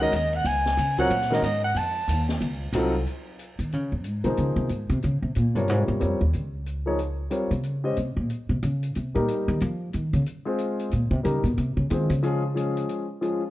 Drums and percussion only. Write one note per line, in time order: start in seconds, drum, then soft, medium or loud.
0.13 hi-hat pedal medium
0.13 ride medium
0.33 ride soft
0.45 ride medium
0.66 snare medium
0.78 hi-hat pedal medium
0.78 ride medium
0.98 kick medium
0.98 ride soft
1.11 ride medium
1.21 snare soft
1.32 snare soft
1.43 hi-hat pedal medium
1.43 ride medium
1.76 ride medium
2.09 hi-hat pedal medium
2.09 ride medium
2.29 snare medium
2.41 ride medium
2.73 hi-hat pedal medium
2.73 ride medium
3.07 closed hi-hat soft
3.39 closed hi-hat soft
3.59 closed hi-hat soft
3.72 closed hi-hat soft
4.04 closed hi-hat soft
4.24 closed hi-hat soft
4.37 closed hi-hat soft
4.69 closed hi-hat soft
4.89 closed hi-hat soft
5.03 closed hi-hat soft
5.35 closed hi-hat soft
5.56 closed hi-hat soft
5.68 closed hi-hat soft
6.00 closed hi-hat soft
6.33 closed hi-hat soft
6.66 closed hi-hat soft
6.99 closed hi-hat soft
7.31 closed hi-hat soft
7.51 closed hi-hat soft
7.64 closed hi-hat soft
7.97 closed hi-hat soft
8.30 closed hi-hat soft
8.63 closed hi-hat soft
8.83 closed hi-hat soft
8.95 closed hi-hat soft
9.28 closed hi-hat soft
9.60 closed hi-hat soft
9.93 closed hi-hat soft
10.13 closed hi-hat soft
10.26 closed hi-hat soft
10.58 closed hi-hat soft
10.80 closed hi-hat soft
10.91 closed hi-hat soft
11.25 closed hi-hat soft
11.45 closed hi-hat soft
11.58 closed hi-hat soft
11.90 closed hi-hat soft
12.11 closed hi-hat soft
12.23 closed hi-hat soft
12.57 closed hi-hat soft
12.77 closed hi-hat soft
12.89 closed hi-hat soft
13.22 closed hi-hat soft